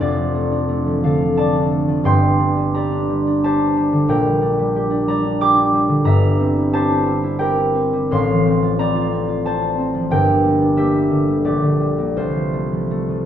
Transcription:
harp
Already playing: F3 A3 D4 A4 E5 F5
0.00 F1 F2 F4 D5
0.18 F3
0.35 A3
0.52 D4
0.69 A3
0.87 F3
1.03 D3 A4 F5
1.20 F3
1.37 A3 D5 A5
1.55 D4
1.71 A3
1.88 F3
2.04 G1 G2 G5 C6
2.23 G3
2.39 D4
2.56 G3
2.74 G4 D5 A#5
2.92 D4
3.09 G3
3.27 D4
3.44 G4 C5 A5
3.60 D4
3.77 G3
3.92 D3
4.08 A#1 A#2 A#4 G5
4.25 G3
4.42 D4
4.59 G3
4.76 G4
4.91 D4
5.08 G3 D5 A#5
5.24 D4
5.40 G4 G5 D6
5.56 D4
5.73 G3
5.89 D3
6.04 G1 G2 E5 A#5
6.22 G3
6.40 C4
6.57 E4
6.73 G4 C5 A5
6.90 E4
7.06 C4
7.23 E4
7.39 G4 A#4 G5
7.57 E4
7.75 C4
7.93 G3
8.11 A1 A2 F5 C6
8.29 F3
8.46 C4
8.63 F4
8.78 C4 D5 A#5
8.95 F4
9.12 C4
9.28 F4
9.45 C4 C5 A5
9.62 F4
9.78 C4
9.94 F3
10.10 G1 G2 A#4 G5
10.28 G3
10.44 A#3
10.61 D4
10.76 A#3 G4 E5
10.94 G3
11.11 D3
11.28 G3
11.44 A#1 G4 D5
11.63 D3
11.80 G3
11.98 A#3
12.17 C2 F4 C5
12.35 F3
12.53 A3
12.72 F3
12.91 A3
13.09 F3

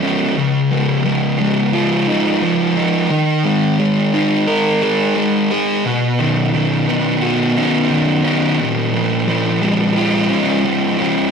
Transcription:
distorted electric guitar
Already playing: F3 G#3 F4
0.03 C#4
0.37 C#3
0.71 F3
1.04 F3
1.39 G#3
1.73 F4
2.08 D#4
2.42 F3
2.76 D#4
3.11 D#3
3.45 G#3
3.79 G#3
4.14 D#4
4.47 A#4
4.82 G#4
5.16 G#3
5.51 G#4
5.85 B2
6.19 D#3
6.54 D#3
6.88 B3
7.22 F#4
7.57 C#4
7.91 D#3
8.24 C#4
8.59 A#2
8.93 F3
9.27 F3
9.62 G#3
9.96 F4
10.30 C#4
10.65 F3
10.99 C#4

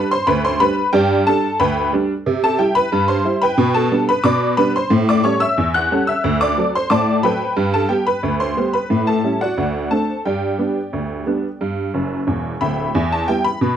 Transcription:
honky-tonk piano
Already playing: G3 D4 B5
0.11 C5 C6
0.27 D2 B4 B5
0.45 C5 C6
0.60 G3 D4 B4 B5
0.93 G2 G4 D5 G5
1.27 G3 D4 A4 A5
1.60 D2 B4 G5 B5
1.93 G3 D4
2.26 C3
2.44 A4 A5
2.59 G3 E4 G4 G5
2.75 B4 B5
2.92 G2
3.08 C5 C6
3.25 G3 E4
3.42 B4 G5 B5
3.58 B2
3.74 A4 A5
3.91 G3 B3 D4
4.09 B4 B5
4.24 B2 D5 B5 D6
4.57 G3 B3 D4 B4 B5
4.76 C5 C6
4.90 A2
5.09 D5 D6
5.24 G3 C#4 A4 C#5 C#6
5.40 E5 E6
5.58 E2
5.74 F#5 F#6
5.91 G3 C#4 A4
6.07 E5 E6
6.24 D2
6.41 D5 D6
6.58 F#3 C4 A4
6.75 C5 C6
6.90 A2 D5 A5 D6
7.23 F#3 C4 A4 B4 G5 B5
7.57 G2
7.74 A4 A5
7.89 G3 B3 G4 G5
8.07 B4 B5
8.23 D2
8.40 C5 C6
8.57 G3 B3 G4
8.73 B4 B5
8.90 A2
9.07 A4 A5
9.24 G3 C#4 E4
9.41 F#4 D5 F#5
9.57 D2
9.91 A3 C4 D4 A4 A5
10.25 G2 G4 D5 G5
10.58 G3 B3 D4
10.93 D2
11.26 G3 B3 D4
11.61 G2
11.94 F#1 F#2
12.27 E1 E2
12.61 D1 D2 E5 G5 B5
12.95 E2
13.12 A5
13.28 G3 B3 E4 G5
13.44 B5
13.61 B2

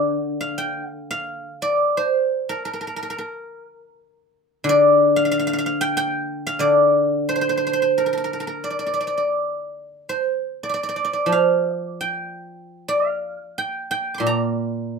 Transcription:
guzheng
Already playing: D3 D4 G4 C5 D5
0.41 F5
0.58 G5
0.90 F5
1.11 F5
1.62 D5
1.97 C5
2.49 A#4
2.65 A#4
2.73 A#4
2.81 A#4
2.87 A#4
2.96 A#4
3.03 A#4
3.10 A#4
3.18 A#4
4.64 D3
4.69 D5
5.16 F5
5.25 F5
5.31 F5
5.39 F5
5.47 F5
5.53 F5
5.58 F5
5.66 F5
5.81 G5
5.97 G5
6.47 F5
6.59 D3 D5
7.29 C5
7.36 C5
7.41 C5
7.49 C5
7.57 C5
7.67 C5
7.73 C5
7.82 C5
7.98 A#4
8.06 A#4
8.13 A#4
8.17 A#4
8.24 A#4
8.33 A#4
8.40 A#4
8.47 A#4
8.64 D5
8.70 D5
8.79 D5
8.86 D5
8.94 D5
9.01 D5
9.07 D5
9.17 D5
10.09 C5
10.63 D5
10.69 D5
10.74 D5
10.83 D5
10.89 D5
10.96 D5
11.05 D5
11.13 D5
11.26 F3
11.32 F5
11.75 D5
12.01 G5
12.88 F5
13.58 G5
13.91 G5
14.14 C6 D6
14.20 A#2
14.27 A#5

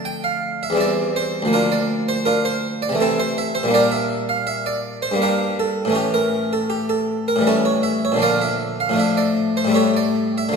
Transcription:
harpsichord
Already playing: F2 D3 A3 D4
0.05 G5
0.24 F5
0.63 E5
0.70 E2 E3
0.75 G3 C4
0.81 D5
1.16 C5
1.42 D2 F3
1.48 A#3
1.53 D4 F4 A#4
1.72 D5
2.09 C5
2.25 D4 F4 A#4
2.45 C5
2.82 D5
2.89 C3 E3
2.95 A3
3.00 C4 E4 A4
3.20 C5
3.38 E5
3.55 C5
3.63 A#2 G3
3.68 A#3 D4
3.74 G4 A#4 D5
3.92 E5
4.29 F5
4.47 E5
4.66 D5
5.02 C5
5.12 G2 G3
5.16 A#3
5.22 D4 G4 A#4
5.60 A4
5.85 A2 E3
5.90 A3 C#4
5.95 G4
6.14 A#4
6.53 A4
6.70 G4
6.89 A4
7.28 A#4
7.36 A2 E3
7.41 G3
7.47 C#4 E4 A4
7.65 C#5
7.83 E5
8.05 C#5
8.12 A#2 D3
8.16 F3 D4
8.22 F4 A#4 D5
8.42 E5
8.80 F5
8.89 A2 F3 A3
8.96 D4 E5
9.17 D5
9.57 C5
9.65 A2 G3
9.70 A3 E4
9.74 G4 A4 C#5
9.96 D5
10.38 E5
10.49 D3 F3
10.53 A3

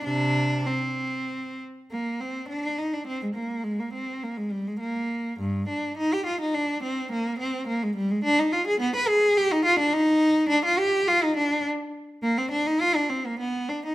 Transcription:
cello
0.05 C3 D4
0.67 C4
1.91 A#3
2.20 C4
2.49 D4
2.79 D#4
2.94 D4
3.07 C4
3.23 G#3
3.35 A#3
3.64 G#3
3.80 A#3
3.93 C4
4.23 A#3
4.37 G#3
4.52 G3
4.68 G#3
4.80 A#3
5.40 G2
5.69 D4
5.97 D#4
6.13 G4
6.26 F4
6.41 D#4
6.54 D4
6.83 C4
7.12 A#3
7.39 C4
7.67 A#3
7.83 G#3
7.96 G3
8.11 G#3
8.24 D4
8.39 D#4
8.53 F4
8.67 G#4
8.80 B3
8.96 B4
9.08 G#4
9.37 G4
9.52 D#4
9.65 F4
9.79 D4
9.94 D#4
10.49 D4
10.65 F4
10.78 G4
11.08 F4
11.24 D#4
11.37 D4
12.23 A#3
12.38 C4
12.51 D4
12.67 D#4
12.81 F4
12.95 D4
13.09 C4
13.26 A#3
13.40 B3
13.69 D4
13.86 D#4

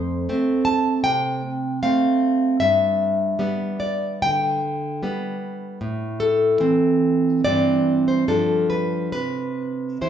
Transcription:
nylon-string guitar
Already playing: F2 C5
0.29 A3 C4
0.65 A5
1.04 C3 G5
1.83 A3 C4 F5
2.60 G2 E5
3.39 G3 B3
3.80 D5
4.22 D3 G5
5.03 G3 B3
5.81 A2
6.20 A4
6.60 E3 C4
7.44 G2 E3 C4 D5
8.08 C5
8.28 G2 F3 D4 A4
8.70 B4
9.12 C3 B4
10.01 E3 E4 C5

